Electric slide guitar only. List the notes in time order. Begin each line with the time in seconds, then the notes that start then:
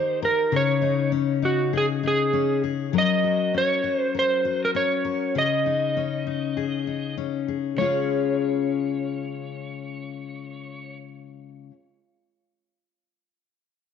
Already playing: C5
0.25 A#4
0.56 C#5
1.45 F#4
1.77 G#4
2.07 G#4
2.98 D#5
3.58 C#5
3.97 C5
4.19 C5
4.65 A#4
4.76 C#5
5.38 D#5
7.78 C#5